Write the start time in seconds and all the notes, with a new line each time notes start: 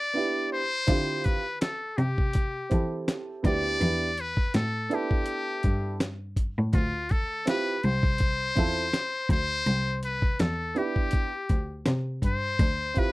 Already playing: D5
0.14 B3 D4 E4 G4
0.53 C5
0.87 D3 C4 E4 F4 G4, kick, closed hi-hat
1.24 B4, kick, closed hi-hat
1.61 A4, snare, closed hi-hat
1.97 C3 G4, closed hi-hat
2.18 kick
2.33 kick, closed hi-hat
2.70 E3 C4 E4 G4 A4, kick, closed hi-hat
3.08 snare, closed hi-hat
3.43 D2 B3 D4 E4 G4 D5, kick, closed hi-hat
3.80 E2 B3 D4 E4 G4, closed hi-hat
4.17 B4, closed hi-hat
4.37 kick
4.54 A2 A4, snare, closed hi-hat
4.89 B3 D4 E4 A4, closed hi-hat
4.94 G4
5.11 kick
5.26 closed hi-hat
5.63 G2, kick, closed hi-hat
6.00 snare, closed hi-hat
6.36 kick, closed hi-hat
6.59 A2
6.73 D2 F4, kick, closed hi-hat
7.09 A4, kick, closed hi-hat
7.46 C4 E4 F4 G4 B4, snare, closed hi-hat
7.83 C2 C5, closed hi-hat
8.03 kick
8.18 kick, closed hi-hat
8.55 E2 C4 E4 F4 A4, kick, closed hi-hat
8.93 snare, closed hi-hat
9.29 D2 C5, kick, closed hi-hat
9.66 C2, closed hi-hat
10.03 B4, closed hi-hat
10.22 kick
10.39 E2 A4, snare, closed hi-hat
10.75 B3 D4 E4 G4, closed hi-hat
10.96 kick
11.11 kick, closed hi-hat
11.49 D2, kick, closed hi-hat
11.86 C3, snare, closed hi-hat
12.22 G2 C5, kick, closed hi-hat
12.59 D2, kick, closed hi-hat
12.94 C4 E4 F4 G4, kick, closed hi-hat
12.99 B4